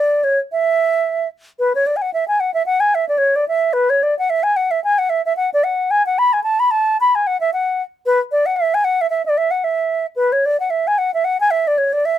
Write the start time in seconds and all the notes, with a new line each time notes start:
Already playing: D5
0.24 C#5
0.52 E5
1.59 B4
1.75 C#5
1.87 D5
1.96 G#5
2.02 F#5
2.14 E5
2.28 G#5
2.40 F#5
2.54 E5
2.66 F#5
2.80 G#5
2.95 E5
3.09 D5
3.18 C#5
3.36 D5
3.48 E5
3.73 B4
3.90 C#5
4.03 D5
4.19 F#5
4.30 E5
4.43 G#5
4.56 F#5
4.71 E5
4.84 G#5
4.98 F#5
5.10 E5
5.26 E5
5.37 F#5
5.54 D5
5.64 F#5
5.91 G#5
6.06 F#5
6.19 B5
6.33 G#5
6.43 A5
6.60 B5
6.71 A5
7.01 B5
7.15 G#5
7.27 F#5
7.41 E5
7.53 F#5
8.06 B4
8.32 D5
8.46 F#5
8.56 E5
8.74 G#5
8.84 F#5
9.01 E5
9.10 E5
9.25 D5
9.38 E5
9.51 F#5
9.64 E5
10.16 B4
10.32 C#5
10.46 D5
10.60 F#5
10.70 E5
10.87 G#5
10.98 F#5
11.14 E5
11.25 F#5
11.40 G#5
11.51 E5
11.67 D5
11.78 C#5
11.93 D5
12.05 E5